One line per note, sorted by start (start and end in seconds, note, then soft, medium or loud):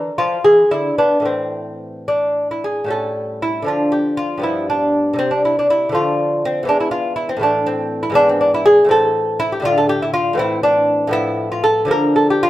0.00 0.16 A#4 medium
0.18 0.37 F3 medium
0.18 0.43 F4 medium
0.44 0.63 E3 medium
0.44 0.69 G#4 medium
0.71 0.90 D3 soft
0.71 0.97 E4 medium
0.98 1.18 B3 soft
0.98 1.24 D4 medium
1.20 2.83 A2 soft
1.20 2.84 E3 soft
1.25 2.05 C4 medium
2.08 2.47 D4 medium
2.51 2.64 E4 soft
2.64 2.90 G#4 medium
2.84 3.62 A2 soft
2.84 3.63 G3 soft
2.84 3.64 C#4 soft
2.90 3.40 A4 medium
3.42 3.67 E4 medium
3.62 4.39 D3 soft
3.62 4.38 F3 soft
3.62 4.41 D4 soft
3.68 3.92 F4 medium
3.92 4.17 G4 medium
4.17 4.42 F4 medium
4.38 5.14 G2 soft
4.38 5.15 F3 soft
4.38 5.16 B3 soft
4.43 4.68 E4 medium
4.70 5.17 D4 medium
5.13 5.89 C3 medium
5.13 5.90 G3 soft
5.19 5.31 C4 medium
5.31 5.44 D4 soft
5.45 5.57 E4 medium
5.59 5.70 D4 medium
5.70 5.94 E4 medium
5.89 6.63 D3 soft
5.89 6.65 F3 soft
5.89 6.45 A3 soft
5.95 6.42 F4 medium
6.45 6.68 C4 medium
6.63 7.37 E2 medium
6.63 7.38 E3 soft
6.67 7.39 G#3 soft
6.67 6.80 D4 medium
6.80 6.91 E4 medium
6.91 7.15 F4 medium
7.16 7.29 E4 medium
7.29 7.41 C4 medium
7.37 8.09 A2 medium
7.37 8.11 E3 soft
7.41 8.13 A3 soft
7.41 7.66 D4 medium
7.66 8.02 C4 medium
8.03 8.15 E4 medium
8.10 8.84 G#2 medium
8.10 8.85 E3 soft
8.14 8.87 B3 medium
8.14 8.28 D4 loud
8.29 8.41 C4 medium
8.41 8.53 D4 medium
8.54 8.66 E4 medium
8.66 8.89 G#4 loud
8.85 9.59 A2 medium
8.85 9.60 E3 soft
8.89 9.62 C4 medium
8.89 9.38 A4 medium
9.40 9.52 E4 medium
9.52 9.65 G4 medium
9.60 10.32 A2 medium
9.60 10.34 D3 medium
9.60 10.37 D4 soft
9.65 9.77 F4 loud
9.78 9.89 A4 medium
9.89 10.02 G4 medium
10.02 10.13 E4 medium
10.14 10.38 F4 medium
10.33 11.06 A2 medium
10.33 11.10 E3 medium
10.38 11.11 C4 medium
10.38 10.63 E4 medium
10.63 11.12 D4 medium
11.07 11.84 A2 medium
11.07 11.85 F3 soft
11.07 11.86 B3 medium
11.13 11.50 E4 loud
11.52 11.64 F4 medium
11.64 11.89 A4 loud
11.85 12.50 D3 medium
11.85 12.50 F3 soft
11.85 12.50 A#3 soft
11.91 12.15 A#4 loud
12.16 12.29 A4 medium
12.30 12.43 G4 medium
12.43 12.50 F4 loud